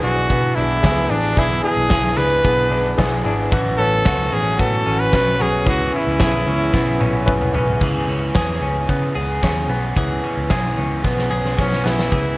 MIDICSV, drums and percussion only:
0, 0, Header, 1, 2, 480
1, 0, Start_track
1, 0, Key_signature, 4, "minor"
1, 0, Tempo, 537634
1, 1225, Time_signature, 4, 2, 24, 8
1, 11048, End_track
2, 0, Start_track
2, 0, Title_t, "Drums"
2, 30, Note_on_c, 9, 46, 67
2, 119, Note_off_c, 9, 46, 0
2, 267, Note_on_c, 9, 36, 96
2, 269, Note_on_c, 9, 42, 58
2, 356, Note_off_c, 9, 36, 0
2, 358, Note_off_c, 9, 42, 0
2, 506, Note_on_c, 9, 46, 69
2, 595, Note_off_c, 9, 46, 0
2, 742, Note_on_c, 9, 42, 80
2, 747, Note_on_c, 9, 36, 114
2, 753, Note_on_c, 9, 38, 115
2, 831, Note_off_c, 9, 42, 0
2, 836, Note_off_c, 9, 36, 0
2, 842, Note_off_c, 9, 38, 0
2, 975, Note_on_c, 9, 46, 60
2, 1064, Note_off_c, 9, 46, 0
2, 1221, Note_on_c, 9, 42, 74
2, 1224, Note_on_c, 9, 36, 116
2, 1310, Note_off_c, 9, 42, 0
2, 1313, Note_off_c, 9, 36, 0
2, 1460, Note_on_c, 9, 46, 76
2, 1549, Note_off_c, 9, 46, 0
2, 1697, Note_on_c, 9, 38, 114
2, 1701, Note_on_c, 9, 42, 74
2, 1706, Note_on_c, 9, 36, 113
2, 1786, Note_off_c, 9, 38, 0
2, 1790, Note_off_c, 9, 42, 0
2, 1795, Note_off_c, 9, 36, 0
2, 1950, Note_on_c, 9, 46, 66
2, 2039, Note_off_c, 9, 46, 0
2, 2184, Note_on_c, 9, 36, 89
2, 2185, Note_on_c, 9, 42, 61
2, 2273, Note_off_c, 9, 36, 0
2, 2274, Note_off_c, 9, 42, 0
2, 2428, Note_on_c, 9, 46, 75
2, 2517, Note_off_c, 9, 46, 0
2, 2662, Note_on_c, 9, 42, 85
2, 2666, Note_on_c, 9, 36, 106
2, 2673, Note_on_c, 9, 38, 103
2, 2751, Note_off_c, 9, 42, 0
2, 2755, Note_off_c, 9, 36, 0
2, 2763, Note_off_c, 9, 38, 0
2, 2902, Note_on_c, 9, 46, 58
2, 2991, Note_off_c, 9, 46, 0
2, 3144, Note_on_c, 9, 36, 122
2, 3145, Note_on_c, 9, 42, 72
2, 3233, Note_off_c, 9, 36, 0
2, 3235, Note_off_c, 9, 42, 0
2, 3383, Note_on_c, 9, 46, 73
2, 3473, Note_off_c, 9, 46, 0
2, 3621, Note_on_c, 9, 38, 126
2, 3625, Note_on_c, 9, 42, 70
2, 3626, Note_on_c, 9, 36, 127
2, 3710, Note_off_c, 9, 38, 0
2, 3714, Note_off_c, 9, 42, 0
2, 3715, Note_off_c, 9, 36, 0
2, 3867, Note_on_c, 9, 46, 72
2, 3957, Note_off_c, 9, 46, 0
2, 4101, Note_on_c, 9, 36, 97
2, 4104, Note_on_c, 9, 42, 72
2, 4190, Note_off_c, 9, 36, 0
2, 4194, Note_off_c, 9, 42, 0
2, 4341, Note_on_c, 9, 46, 73
2, 4430, Note_off_c, 9, 46, 0
2, 4576, Note_on_c, 9, 42, 77
2, 4581, Note_on_c, 9, 36, 108
2, 4587, Note_on_c, 9, 38, 110
2, 4665, Note_off_c, 9, 42, 0
2, 4671, Note_off_c, 9, 36, 0
2, 4676, Note_off_c, 9, 38, 0
2, 4813, Note_on_c, 9, 46, 67
2, 4902, Note_off_c, 9, 46, 0
2, 5055, Note_on_c, 9, 42, 68
2, 5058, Note_on_c, 9, 36, 116
2, 5144, Note_off_c, 9, 42, 0
2, 5147, Note_off_c, 9, 36, 0
2, 5295, Note_on_c, 9, 46, 72
2, 5385, Note_off_c, 9, 46, 0
2, 5532, Note_on_c, 9, 38, 111
2, 5536, Note_on_c, 9, 42, 76
2, 5539, Note_on_c, 9, 36, 123
2, 5621, Note_off_c, 9, 38, 0
2, 5625, Note_off_c, 9, 42, 0
2, 5629, Note_off_c, 9, 36, 0
2, 5781, Note_on_c, 9, 46, 64
2, 5871, Note_off_c, 9, 46, 0
2, 6016, Note_on_c, 9, 36, 102
2, 6019, Note_on_c, 9, 38, 58
2, 6105, Note_off_c, 9, 36, 0
2, 6108, Note_off_c, 9, 38, 0
2, 6256, Note_on_c, 9, 48, 79
2, 6345, Note_off_c, 9, 48, 0
2, 6497, Note_on_c, 9, 47, 84
2, 6498, Note_on_c, 9, 36, 111
2, 6586, Note_off_c, 9, 47, 0
2, 6587, Note_off_c, 9, 36, 0
2, 6617, Note_on_c, 9, 45, 73
2, 6706, Note_off_c, 9, 45, 0
2, 6736, Note_on_c, 9, 43, 99
2, 6825, Note_off_c, 9, 43, 0
2, 6855, Note_on_c, 9, 43, 89
2, 6944, Note_off_c, 9, 43, 0
2, 6975, Note_on_c, 9, 36, 113
2, 6975, Note_on_c, 9, 49, 95
2, 7064, Note_off_c, 9, 36, 0
2, 7064, Note_off_c, 9, 49, 0
2, 7215, Note_on_c, 9, 46, 67
2, 7304, Note_off_c, 9, 46, 0
2, 7453, Note_on_c, 9, 38, 103
2, 7457, Note_on_c, 9, 42, 74
2, 7459, Note_on_c, 9, 36, 121
2, 7543, Note_off_c, 9, 38, 0
2, 7547, Note_off_c, 9, 42, 0
2, 7549, Note_off_c, 9, 36, 0
2, 7708, Note_on_c, 9, 46, 59
2, 7797, Note_off_c, 9, 46, 0
2, 7938, Note_on_c, 9, 36, 92
2, 7943, Note_on_c, 9, 42, 69
2, 8027, Note_off_c, 9, 36, 0
2, 8032, Note_off_c, 9, 42, 0
2, 8184, Note_on_c, 9, 46, 68
2, 8274, Note_off_c, 9, 46, 0
2, 8418, Note_on_c, 9, 42, 79
2, 8420, Note_on_c, 9, 36, 100
2, 8429, Note_on_c, 9, 38, 101
2, 8507, Note_off_c, 9, 42, 0
2, 8509, Note_off_c, 9, 36, 0
2, 8518, Note_off_c, 9, 38, 0
2, 8654, Note_on_c, 9, 46, 55
2, 8743, Note_off_c, 9, 46, 0
2, 8894, Note_on_c, 9, 42, 67
2, 8897, Note_on_c, 9, 36, 109
2, 8983, Note_off_c, 9, 42, 0
2, 8987, Note_off_c, 9, 36, 0
2, 9137, Note_on_c, 9, 46, 71
2, 9226, Note_off_c, 9, 46, 0
2, 9376, Note_on_c, 9, 38, 103
2, 9379, Note_on_c, 9, 42, 66
2, 9381, Note_on_c, 9, 36, 115
2, 9465, Note_off_c, 9, 38, 0
2, 9469, Note_off_c, 9, 42, 0
2, 9470, Note_off_c, 9, 36, 0
2, 9624, Note_on_c, 9, 46, 60
2, 9713, Note_off_c, 9, 46, 0
2, 9860, Note_on_c, 9, 36, 102
2, 9866, Note_on_c, 9, 38, 47
2, 9949, Note_off_c, 9, 36, 0
2, 9955, Note_off_c, 9, 38, 0
2, 9985, Note_on_c, 9, 38, 54
2, 10074, Note_off_c, 9, 38, 0
2, 10226, Note_on_c, 9, 38, 51
2, 10316, Note_off_c, 9, 38, 0
2, 10343, Note_on_c, 9, 36, 102
2, 10349, Note_on_c, 9, 38, 73
2, 10433, Note_off_c, 9, 36, 0
2, 10439, Note_off_c, 9, 38, 0
2, 10469, Note_on_c, 9, 38, 65
2, 10558, Note_off_c, 9, 38, 0
2, 10588, Note_on_c, 9, 38, 85
2, 10677, Note_off_c, 9, 38, 0
2, 10707, Note_on_c, 9, 38, 83
2, 10796, Note_off_c, 9, 38, 0
2, 10822, Note_on_c, 9, 36, 107
2, 10824, Note_on_c, 9, 42, 63
2, 10911, Note_off_c, 9, 36, 0
2, 10913, Note_off_c, 9, 42, 0
2, 11048, End_track
0, 0, End_of_file